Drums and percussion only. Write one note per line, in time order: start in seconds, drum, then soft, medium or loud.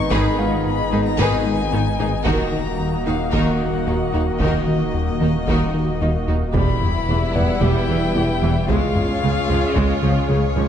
0.11 taiko loud
1.19 taiko medium
2.26 taiko loud
3.33 taiko medium
4.40 taiko medium
5.48 taiko medium
6.54 taiko loud
6.81 taiko low-mid soft
7.35 taiko low-mid soft
7.61 taiko medium
8.69 taiko medium
8.96 taiko low-mid soft
9.49 taiko low-mid soft
9.76 taiko medium